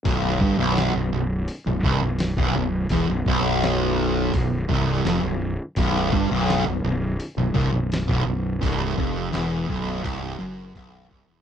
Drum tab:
HH |o---o---o---o---|o---o---o---o---|o---o---o---o---|o---o---o---o---|
SD |----o-----o-o---|----o-----o-o---|-o--o-----o-o---|----o-----------|
BD |o-o-------o--o--|o-o-----o-o-----|o-o-------o--o--|o-o---o-o---o-o-|